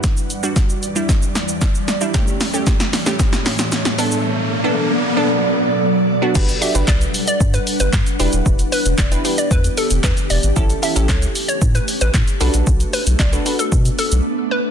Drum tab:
CC |----------------|----------------|----------------|x---------------|
HH |x-x-x-x-x-x-x-x-|x-o-x-o-x-o-x-o-|----------------|-xox-xox-xox-xox|
SH |xxxxxxxxxxxxxxxx|xxxxxxxxxxxxxxxx|----------------|xxxxxxxxxxxxxxxx|
CP |----------------|----------------|----------------|----x-------x---|
SD |o---o---o-o-o-o-|o-o-oooooooooo--|----------------|----o-------o---|
BD |o---o---o---o---|o---o---o-------|----------------|o---o---o---o---|

CC |----------------|----------------|----------------|
HH |-xox-xox-xox-xox|-xox-xox-xox-xox|-xox-xox-xox----|
SH |xxxxxxxxxxxxxxxx|xxxxxxxxxxxxxxxx|xxxxxxxxxxxx----|
CP |----x-------x---|----x-------x---|----x-----------|
SD |----o-------o---|----o-------o---|----o-----------|
BD |o---o---o---o---|o---o---o---o---|o---o---o-------|